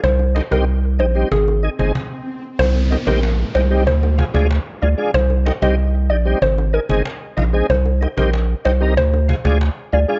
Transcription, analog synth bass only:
X:1
M:4/4
L:1/16
Q:1/4=94
K:Cm
V:1 name="Analog synth bass" clef=bass
C,,3 C,,3 B,,,2 A,,,3 G,,, z4 | C,,3 B,,,3 C,,2 D,,3 D,,2 z D,, z | C,,3 C,,3 B,,,2 A,,,3 G,,, z2 B,,,2 | C,,3 B,,,3 C,,2 D,,3 D,,2 z D,, z |]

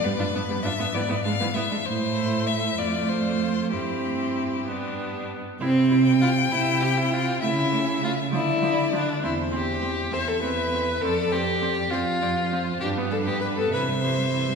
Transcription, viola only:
X:1
M:6/8
L:1/16
Q:3/8=66
K:C
V:1 name="Viola"
G, D B, G, D B, E, B, ^G, E, B, G, | A,6 A,6 | C6 B,4- B, z | E2 E2 E2 E2 E2 E2 |
A,2 A,2 A,2 F,2 F,2 F,2 | C2 C2 C2 C2 C2 C2 | C2 C2 C2 C2 C2 C2 | D B, D B, D B, E, G, E, G, E, G, |]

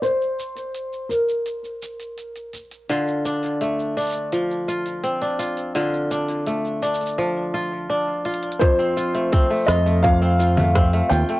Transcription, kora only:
X:1
M:4/4
L:1/16
Q:1/4=84
K:F
V:1 name="Kora"
z16 | [D,F]2 D2 A,2 D2 F,2 F2 C D F2 | [D,F]2 D2 A,2 D2 F,2 F2 D2 F2 | F,, C F A, C A, F A, F,, C F A, C A, F A, |]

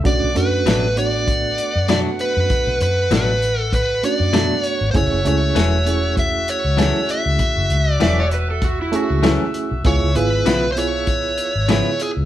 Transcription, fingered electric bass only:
X:1
M:4/4
L:1/16
Q:"Swing 16ths" 1/4=98
K:F#m
V:1 name="Fingered electric bass" clef=bass
B,,, B,,, F,,2 A,,,6- A,,, F,,2 z2 F,, | z B,,, F,,2 A,,,6- A,,, F,,2 z2 G,,, | F,,, F,,, C,,2 E,,,6- E,,, C,,2 z2 C,, | z F,,, C,,2 E,,,6- E,,, C,,2 z2 B,,, |
C,, C,, G,,,2 B,,,6- B,,, G,,,2 z2 C,, |]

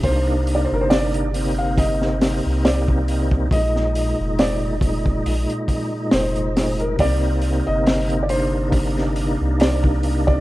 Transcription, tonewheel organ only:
X:1
M:4/4
L:1/8
Q:"Swing 16ths" 1/4=69
K:Cm
V:1 name="Tonewheel organ"
[C,B,DE]3 [C,B,CE]4- [C,B,CE] | [B,,A,E]3 [B,,A,E]4- [B,,A,E] | [C,B,CE]3 [C,B,DE]4- [C,B,DE] |]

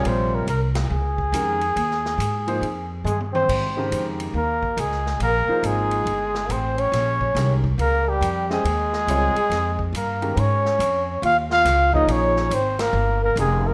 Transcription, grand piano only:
X:1
M:4/4
L:1/8
Q:"Swing" 1/4=140
K:Ebmix
V:1 name="Grand piano"
[C,G,FBd]2 z4 [E,A,DGB] z | z3 [F,B,EAc] z4 | z [D,E,A,GB]3 z4 | z [F,B,EAc]3 z4 |
z2 [E,A,DGB] z4 [A,DGce] | z2 [G,CFBd] z4 [E,A,DGB] | z6 z [F,B,EAd]- | [F,B,EAd]2 z4 [E,A,DGB] z |]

